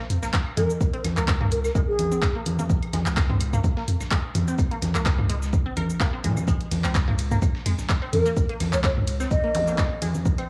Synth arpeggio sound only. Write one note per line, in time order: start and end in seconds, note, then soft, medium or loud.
0.23 0.28 A#3 medium
0.57 0.63 G#3 medium
0.93 1.01 C4 medium
1.17 1.22 A#3 medium
1.41 1.46 A#3 medium
1.75 1.81 G#3 medium
2.12 2.20 C4 medium
2.35 2.41 A#3 medium
2.59 2.64 A#3 medium
2.93 3.00 G#3 medium
3.30 3.38 C4 medium
3.53 3.59 A#3 medium
3.77 3.82 A#3 medium
4.11 4.18 G#3 medium
4.48 4.56 C4 medium
4.71 4.77 A#3 medium
4.95 5.00 A#3 medium
5.29 5.36 G#3 medium
5.66 5.74 C4 medium
5.77 5.83 A#4 loud
6.00 6.10 A#3 medium
6.13 6.18 C4 medium
6.24 6.33 G#3 medium
6.48 6.54 G#3 medium
6.84 6.92 C4 medium
7.08 7.13 A#3 medium
7.31 7.37 A#3 medium
7.66 7.72 G#3 medium
8.02 8.10 C4 medium
8.26 8.31 A#3 medium
8.49 8.55 A#3 medium
8.84 8.90 G#3 medium
9.20 9.28 C4 medium
9.44 9.49 A#3 medium
9.67 9.73 A#3 medium
10.02 10.08 G#3 medium
10.38 10.46 C4 medium